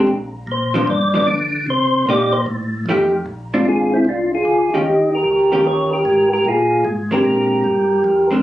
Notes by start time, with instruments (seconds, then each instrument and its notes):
0.07 tonewheel organ A#1
0.47 tonewheel organ A#2
0.51 tonewheel organ C5
0.74 hollow-body jazz guitar F3 B3 D4
0.87 tonewheel organ G2 D5
1.14 hollow-body jazz guitar F3 B3 D4, tonewheel organ D5
1.27 tonewheel organ D3
1.67 tonewheel organ C3 C5
2.07 tonewheel organ A#2 D5, hollow-body jazz guitar A#3 D#4 G4
2.32 tonewheel organ C5
2.46 tonewheel organ A2
2.86 tonewheel organ F2, hollow-body jazz guitar F3 A3 D#4
2.90 hollow-body jazz guitar G4
3.26 tonewheel organ A#1
3.54 hollow-body jazz guitar G#3 C4 D4, tonewheel organ D4 F4
3.65 tonewheel organ G#1 F4 G#4
3.94 tonewheel organ C4 E4
4.05 tonewheel organ C2
4.09 tonewheel organ D4 F4
4.35 tonewheel organ F4 G#4
4.45 tonewheel organ D2
4.71 tonewheel organ D2 D#4 G4, hollow-body jazz guitar D#3 C#4 F4
4.75 hollow-body jazz guitar G4
4.85 tonewheel organ D#2
5.15 tonewheel organ G4 A#4
5.24 tonewheel organ C#2
5.52 hollow-body jazz guitar D#3 C#4 F4 G4, tonewheel organ G4 A#4
5.64 tonewheel organ D#2 A#4 C#5
5.93 tonewheel organ G4 A#4
6.05 tonewheel organ G#2
6.33 tonewheel organ G4 A#4
6.45 tonewheel organ A#2 F4 G#4
6.85 tonewheel organ G#2
7.11 hollow-body jazz guitar G#3 C4 D4, tonewheel organ G4 A#4
7.25 tonewheel organ A#2
7.64 tonewheel organ G2
8.04 tonewheel organ F2
8.31 hollow-body jazz guitar G#3 C4 D4